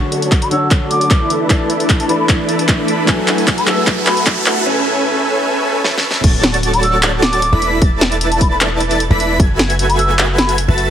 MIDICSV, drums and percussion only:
0, 0, Header, 1, 2, 480
1, 0, Start_track
1, 0, Tempo, 394737
1, 1826, Time_signature, 4, 2, 24, 8
1, 13257, End_track
2, 0, Start_track
2, 0, Title_t, "Drums"
2, 146, Note_on_c, 9, 42, 70
2, 268, Note_off_c, 9, 42, 0
2, 272, Note_on_c, 9, 42, 66
2, 385, Note_off_c, 9, 42, 0
2, 385, Note_on_c, 9, 36, 94
2, 385, Note_on_c, 9, 39, 51
2, 385, Note_on_c, 9, 42, 81
2, 506, Note_off_c, 9, 39, 0
2, 506, Note_off_c, 9, 42, 0
2, 507, Note_off_c, 9, 36, 0
2, 510, Note_on_c, 9, 42, 61
2, 623, Note_off_c, 9, 42, 0
2, 623, Note_on_c, 9, 42, 66
2, 744, Note_off_c, 9, 42, 0
2, 863, Note_on_c, 9, 39, 51
2, 863, Note_on_c, 9, 42, 80
2, 865, Note_on_c, 9, 36, 100
2, 985, Note_off_c, 9, 39, 0
2, 985, Note_off_c, 9, 42, 0
2, 986, Note_off_c, 9, 36, 0
2, 1103, Note_on_c, 9, 42, 70
2, 1225, Note_off_c, 9, 42, 0
2, 1231, Note_on_c, 9, 42, 66
2, 1344, Note_off_c, 9, 42, 0
2, 1344, Note_on_c, 9, 39, 57
2, 1344, Note_on_c, 9, 42, 85
2, 1345, Note_on_c, 9, 36, 98
2, 1466, Note_off_c, 9, 36, 0
2, 1466, Note_off_c, 9, 39, 0
2, 1466, Note_off_c, 9, 42, 0
2, 1584, Note_on_c, 9, 42, 68
2, 1705, Note_off_c, 9, 42, 0
2, 1824, Note_on_c, 9, 36, 98
2, 1824, Note_on_c, 9, 39, 58
2, 1824, Note_on_c, 9, 42, 81
2, 1945, Note_off_c, 9, 39, 0
2, 1945, Note_off_c, 9, 42, 0
2, 1946, Note_off_c, 9, 36, 0
2, 2064, Note_on_c, 9, 42, 70
2, 2186, Note_off_c, 9, 42, 0
2, 2191, Note_on_c, 9, 42, 68
2, 2304, Note_off_c, 9, 42, 0
2, 2304, Note_on_c, 9, 36, 97
2, 2304, Note_on_c, 9, 39, 62
2, 2304, Note_on_c, 9, 42, 84
2, 2426, Note_off_c, 9, 36, 0
2, 2426, Note_off_c, 9, 39, 0
2, 2426, Note_off_c, 9, 42, 0
2, 2431, Note_on_c, 9, 42, 64
2, 2544, Note_off_c, 9, 42, 0
2, 2544, Note_on_c, 9, 42, 70
2, 2666, Note_off_c, 9, 42, 0
2, 2784, Note_on_c, 9, 36, 99
2, 2784, Note_on_c, 9, 39, 67
2, 2784, Note_on_c, 9, 42, 82
2, 2906, Note_off_c, 9, 36, 0
2, 2906, Note_off_c, 9, 39, 0
2, 2906, Note_off_c, 9, 42, 0
2, 3023, Note_on_c, 9, 42, 71
2, 3145, Note_off_c, 9, 42, 0
2, 3151, Note_on_c, 9, 42, 68
2, 3264, Note_off_c, 9, 42, 0
2, 3264, Note_on_c, 9, 36, 100
2, 3264, Note_on_c, 9, 39, 73
2, 3264, Note_on_c, 9, 42, 85
2, 3386, Note_off_c, 9, 36, 0
2, 3386, Note_off_c, 9, 39, 0
2, 3386, Note_off_c, 9, 42, 0
2, 3505, Note_on_c, 9, 42, 70
2, 3627, Note_off_c, 9, 42, 0
2, 3744, Note_on_c, 9, 39, 74
2, 3744, Note_on_c, 9, 42, 82
2, 3745, Note_on_c, 9, 36, 96
2, 3866, Note_off_c, 9, 39, 0
2, 3866, Note_off_c, 9, 42, 0
2, 3867, Note_off_c, 9, 36, 0
2, 3986, Note_on_c, 9, 39, 77
2, 3986, Note_on_c, 9, 42, 68
2, 4107, Note_off_c, 9, 39, 0
2, 4107, Note_off_c, 9, 42, 0
2, 4112, Note_on_c, 9, 42, 67
2, 4225, Note_off_c, 9, 42, 0
2, 4225, Note_on_c, 9, 36, 100
2, 4225, Note_on_c, 9, 39, 80
2, 4225, Note_on_c, 9, 42, 82
2, 4347, Note_off_c, 9, 36, 0
2, 4347, Note_off_c, 9, 39, 0
2, 4347, Note_off_c, 9, 42, 0
2, 4352, Note_on_c, 9, 42, 64
2, 4466, Note_off_c, 9, 42, 0
2, 4466, Note_on_c, 9, 39, 78
2, 4466, Note_on_c, 9, 42, 67
2, 4587, Note_off_c, 9, 39, 0
2, 4587, Note_off_c, 9, 42, 0
2, 4704, Note_on_c, 9, 39, 80
2, 4704, Note_on_c, 9, 42, 81
2, 4705, Note_on_c, 9, 36, 101
2, 4826, Note_off_c, 9, 39, 0
2, 4826, Note_off_c, 9, 42, 0
2, 4827, Note_off_c, 9, 36, 0
2, 4944, Note_on_c, 9, 39, 88
2, 4944, Note_on_c, 9, 42, 69
2, 5065, Note_off_c, 9, 39, 0
2, 5065, Note_off_c, 9, 42, 0
2, 5071, Note_on_c, 9, 42, 67
2, 5184, Note_off_c, 9, 42, 0
2, 5184, Note_on_c, 9, 39, 91
2, 5184, Note_on_c, 9, 42, 87
2, 5186, Note_on_c, 9, 36, 99
2, 5306, Note_off_c, 9, 39, 0
2, 5306, Note_off_c, 9, 42, 0
2, 5308, Note_off_c, 9, 36, 0
2, 5424, Note_on_c, 9, 39, 90
2, 5424, Note_on_c, 9, 42, 69
2, 5546, Note_off_c, 9, 39, 0
2, 5546, Note_off_c, 9, 42, 0
2, 7106, Note_on_c, 9, 38, 73
2, 7228, Note_off_c, 9, 38, 0
2, 7266, Note_on_c, 9, 38, 83
2, 7388, Note_off_c, 9, 38, 0
2, 7426, Note_on_c, 9, 38, 98
2, 7547, Note_off_c, 9, 38, 0
2, 7586, Note_on_c, 9, 42, 85
2, 7586, Note_on_c, 9, 49, 103
2, 7587, Note_on_c, 9, 36, 122
2, 7707, Note_off_c, 9, 42, 0
2, 7707, Note_off_c, 9, 49, 0
2, 7708, Note_off_c, 9, 36, 0
2, 7825, Note_on_c, 9, 40, 87
2, 7825, Note_on_c, 9, 42, 70
2, 7946, Note_off_c, 9, 40, 0
2, 7946, Note_off_c, 9, 42, 0
2, 7952, Note_on_c, 9, 42, 71
2, 8065, Note_off_c, 9, 42, 0
2, 8065, Note_on_c, 9, 42, 86
2, 8186, Note_off_c, 9, 42, 0
2, 8190, Note_on_c, 9, 42, 66
2, 8305, Note_off_c, 9, 42, 0
2, 8305, Note_on_c, 9, 42, 71
2, 8426, Note_off_c, 9, 42, 0
2, 8544, Note_on_c, 9, 39, 122
2, 8544, Note_on_c, 9, 42, 83
2, 8666, Note_off_c, 9, 39, 0
2, 8666, Note_off_c, 9, 42, 0
2, 8785, Note_on_c, 9, 40, 88
2, 8785, Note_on_c, 9, 42, 72
2, 8906, Note_off_c, 9, 40, 0
2, 8906, Note_off_c, 9, 42, 0
2, 8911, Note_on_c, 9, 42, 68
2, 9026, Note_off_c, 9, 42, 0
2, 9026, Note_on_c, 9, 42, 86
2, 9147, Note_off_c, 9, 42, 0
2, 9265, Note_on_c, 9, 42, 71
2, 9387, Note_off_c, 9, 42, 0
2, 9505, Note_on_c, 9, 42, 85
2, 9506, Note_on_c, 9, 36, 125
2, 9626, Note_off_c, 9, 42, 0
2, 9628, Note_off_c, 9, 36, 0
2, 9744, Note_on_c, 9, 40, 84
2, 9744, Note_on_c, 9, 42, 72
2, 9866, Note_off_c, 9, 40, 0
2, 9866, Note_off_c, 9, 42, 0
2, 9871, Note_on_c, 9, 42, 71
2, 9985, Note_off_c, 9, 42, 0
2, 9985, Note_on_c, 9, 42, 85
2, 10106, Note_off_c, 9, 42, 0
2, 10112, Note_on_c, 9, 42, 65
2, 10225, Note_off_c, 9, 42, 0
2, 10225, Note_on_c, 9, 42, 72
2, 10226, Note_on_c, 9, 36, 64
2, 10347, Note_off_c, 9, 42, 0
2, 10348, Note_off_c, 9, 36, 0
2, 10467, Note_on_c, 9, 39, 122
2, 10467, Note_on_c, 9, 42, 84
2, 10588, Note_off_c, 9, 39, 0
2, 10588, Note_off_c, 9, 42, 0
2, 10706, Note_on_c, 9, 42, 71
2, 10828, Note_off_c, 9, 42, 0
2, 10832, Note_on_c, 9, 42, 68
2, 10947, Note_off_c, 9, 42, 0
2, 10947, Note_on_c, 9, 42, 88
2, 11069, Note_off_c, 9, 42, 0
2, 11187, Note_on_c, 9, 42, 70
2, 11308, Note_off_c, 9, 42, 0
2, 11426, Note_on_c, 9, 36, 126
2, 11428, Note_on_c, 9, 42, 80
2, 11548, Note_off_c, 9, 36, 0
2, 11550, Note_off_c, 9, 42, 0
2, 11666, Note_on_c, 9, 40, 79
2, 11666, Note_on_c, 9, 42, 70
2, 11788, Note_off_c, 9, 40, 0
2, 11788, Note_off_c, 9, 42, 0
2, 11793, Note_on_c, 9, 42, 70
2, 11907, Note_off_c, 9, 42, 0
2, 11907, Note_on_c, 9, 42, 84
2, 12029, Note_off_c, 9, 42, 0
2, 12034, Note_on_c, 9, 42, 65
2, 12147, Note_off_c, 9, 42, 0
2, 12147, Note_on_c, 9, 42, 69
2, 12269, Note_off_c, 9, 42, 0
2, 12387, Note_on_c, 9, 39, 127
2, 12387, Note_on_c, 9, 42, 82
2, 12509, Note_off_c, 9, 39, 0
2, 12509, Note_off_c, 9, 42, 0
2, 12627, Note_on_c, 9, 40, 82
2, 12627, Note_on_c, 9, 42, 71
2, 12749, Note_off_c, 9, 40, 0
2, 12749, Note_off_c, 9, 42, 0
2, 12753, Note_on_c, 9, 42, 67
2, 12867, Note_off_c, 9, 42, 0
2, 12867, Note_on_c, 9, 42, 86
2, 12988, Note_off_c, 9, 42, 0
2, 13106, Note_on_c, 9, 42, 68
2, 13228, Note_off_c, 9, 42, 0
2, 13257, End_track
0, 0, End_of_file